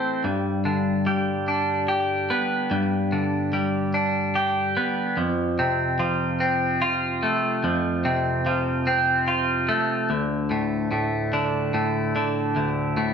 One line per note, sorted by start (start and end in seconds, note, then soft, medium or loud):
0.00 0.24 E3 soft
0.00 0.27 A3 soft
0.00 0.24 C4 soft
0.00 0.24 E4 soft
0.00 0.27 A4 medium
0.24 2.30 G2 medium
0.65 2.71 D3 soft
1.07 3.12 G3 medium
1.48 3.53 D4 soft
1.88 3.94 G4 medium
2.30 4.35 B3 medium
2.71 4.76 G2 medium
3.12 5.18 D3 medium
3.53 5.17 G3 medium
3.94 5.17 D4 medium
4.35 5.18 G4 medium
4.77 5.18 B3 medium
5.17 7.23 F2 medium
5.59 7.64 C3 medium
5.99 8.05 F3 medium
6.40 8.46 C4 soft
6.82 8.87 F4 medium
7.23 9.28 A3 medium
7.64 9.69 F2 medium
8.05 10.10 C3 medium
8.46 10.10 F3 medium
8.87 10.10 C4 medium
9.28 10.10 F4 medium
9.69 10.10 A3 medium
10.10 12.15 D2 medium
10.51 10.90 A2 medium
10.91 11.73 A2 medium
11.33 12.14 D3 medium
11.74 12.96 A2 medium
12.16 13.14 D3 medium
12.56 13.14 D2 medium
12.97 13.14 A2 medium